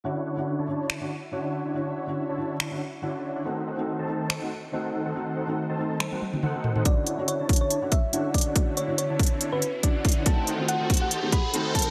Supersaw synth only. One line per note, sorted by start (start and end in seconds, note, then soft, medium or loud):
0.05 0.24 D3 medium
0.05 0.24 D4 medium
0.05 0.24 E4 medium
0.05 0.24 C#5 medium
0.05 0.24 F#5 medium
0.26 0.56 D3 medium
0.26 0.56 D4 medium
0.26 0.56 E4 medium
0.26 0.56 C#5 medium
0.26 0.56 F#5 medium
0.59 0.99 D3 medium
0.59 0.98 D4 medium
0.59 0.99 E4 medium
0.59 0.98 C#5 medium
0.59 0.99 A5 loud
1.01 1.11 D3 medium
1.01 1.11 D4 medium
1.01 1.11 E4 medium
1.01 1.11 C#5 medium
1.01 1.11 F#5 medium
1.32 1.62 D3 medium
1.32 1.62 D4 medium
1.32 1.62 E4 medium
1.32 1.62 C#5 medium
1.32 1.62 F#5 loud
1.65 1.73 D3 medium
1.65 1.73 D4 medium
1.65 1.73 E4 medium
1.65 1.73 C#5 medium
1.65 1.73 F#5 medium
1.75 1.94 D3 medium
1.75 1.94 D4 medium
1.75 1.94 E4 medium
1.75 1.94 C#5 medium
1.75 1.94 F#5 medium
1.96 2.26 D3 medium
1.96 2.26 D4 medium
1.96 2.26 E4 medium
1.96 2.26 C#5 medium
1.96 2.26 F#5 medium
2.29 2.69 D3 medium
2.29 2.69 D4 medium
2.29 2.69 E4 medium
2.29 2.69 C#5 medium
2.29 2.69 A5 loud
2.72 2.81 D3 medium
2.72 2.81 D4 medium
2.72 2.81 E4 medium
2.72 2.81 C#5 medium
2.72 2.81 F#5 medium
3.03 3.33 D3 medium
3.03 3.33 D4 medium
3.03 3.33 E4 medium
3.03 3.33 C#5 medium
3.03 3.33 F#5 loud
3.35 3.43 D3 medium
3.35 3.43 D4 medium
3.35 3.43 E4 medium
3.35 3.43 C#5 medium
3.35 3.43 F#5 loud
3.45 3.64 D#3 medium
3.45 3.64 D#4 medium
3.45 3.64 A4 medium
3.45 3.64 C5 medium
3.45 3.64 F#5 medium
3.67 3.97 D#3 medium
3.67 3.97 D#4 medium
3.67 3.97 A4 medium
3.67 3.97 C5 medium
3.67 3.97 F#5 medium
3.99 4.39 D#3 medium
3.99 4.39 D#4 medium
3.99 4.39 A4 medium
3.99 4.39 C5 medium
3.99 4.39 A5 loud
4.42 4.51 D#3 medium
4.42 4.51 D#4 medium
4.42 4.52 A4 medium
4.42 4.52 C5 medium
4.42 4.52 F#5 medium
4.73 5.03 D#3 medium
4.73 5.03 D#4 medium
4.73 5.03 A4 medium
4.73 5.03 C5 medium
4.73 5.03 F#5 loud
5.06 5.13 D#3 medium
5.06 5.13 D#4 medium
5.06 5.13 A4 medium
5.06 5.13 C5 medium
5.06 5.13 F#5 loud
5.15 5.34 D#3 medium
5.15 5.34 D#4 medium
5.15 5.34 A4 medium
5.15 5.34 C5 medium
5.15 5.34 F#5 medium
5.37 5.67 D#3 medium
5.37 5.67 D#4 medium
5.37 5.67 A4 medium
5.37 5.67 C5 medium
5.37 5.67 F#5 medium
5.69 6.09 D#3 medium
5.69 6.09 D#4 medium
5.69 6.09 A4 medium
5.69 6.09 C5 medium
5.69 6.09 A5 loud
6.12 6.22 D#3 medium
6.12 6.22 D#4 medium
6.12 6.22 A4 medium
6.12 6.22 C5 medium
6.12 6.22 F#5 medium
6.43 6.73 D#3 medium
6.43 6.73 D#4 medium
6.43 6.73 A4 medium
6.43 6.73 C5 medium
6.43 6.73 F#5 loud
6.76 6.83 D#3 medium
6.76 6.83 D#4 medium
6.76 6.83 A4 medium
6.76 6.83 C5 medium
6.76 6.83 F#5 loud
6.85 7.04 D3 medium
6.85 7.04 F#5 medium
7.07 7.37 D3 medium
7.07 7.37 D4 medium
7.07 7.37 E4 medium
7.07 7.37 C#5 medium
7.07 7.37 F#5 medium
7.40 7.79 D3 medium
7.40 7.79 D4 medium
7.40 7.79 E4 medium
7.40 7.80 C#5 medium
7.40 7.79 A5 loud
7.82 7.92 D3 medium
7.82 7.92 D4 medium
7.82 7.92 E4 medium
7.82 7.92 C#5 medium
7.82 7.92 F#5 medium
8.13 8.43 D3 medium
8.13 8.43 D4 medium
8.13 8.43 E4 medium
8.13 8.43 C#5 medium
8.13 8.43 F#5 loud
8.46 8.53 D3 medium
8.46 8.53 D4 medium
8.46 8.53 E4 medium
8.46 8.53 C#5 medium
8.46 8.53 F#5 loud
8.56 8.75 D3 medium
8.56 8.75 D4 medium
8.56 8.75 E4 medium
8.56 8.75 C#5 medium
8.56 8.75 F#5 medium
8.77 9.07 D3 medium
8.77 9.07 D4 medium
8.77 9.07 E4 medium
8.77 9.07 C#5 medium
8.77 9.07 F#5 medium
9.10 9.50 D3 medium
9.10 9.50 D4 medium
9.10 9.50 E4 medium
9.10 9.50 C#5 medium
9.10 9.50 A5 loud
9.52 9.62 D3 medium
9.52 9.62 D4 medium
9.52 9.62 E4 medium
9.52 9.62 C#5 medium
9.52 9.62 F#5 medium
9.83 10.13 D3 medium
9.83 10.13 D4 medium
9.83 10.13 E4 medium
9.83 10.14 C#5 medium
9.83 10.14 F#5 loud
10.16 10.24 D3 medium
10.16 10.24 D4 medium
10.16 10.24 E4 medium
10.16 10.24 C#5 medium
10.16 10.24 F#5 loud
10.26 10.45 D#3 medium
10.26 10.45 C5 medium
10.47 10.77 D#3 medium
10.47 10.77 D#4 medium
10.47 10.77 A4 medium
10.47 10.77 C5 medium
10.47 10.77 F#5 medium
10.80 11.20 D#3 medium
10.80 11.20 D#4 medium
10.80 11.20 A4 medium
10.80 11.20 C5 medium
10.80 11.20 A5 loud
11.23 11.32 D#3 medium
11.23 11.32 D#4 medium
11.23 11.32 A4 medium
11.23 11.32 C5 medium
11.23 11.32 F#5 medium
11.54 11.84 D#3 medium
11.54 11.84 D#4 medium
11.54 11.84 A4 medium
11.54 11.84 C5 medium
11.54 11.84 F#5 loud
11.86 11.90 D#3 medium
11.86 11.90 D#4 medium
11.86 11.90 A4 medium
11.86 11.90 C5 medium
11.86 11.90 F#5 loud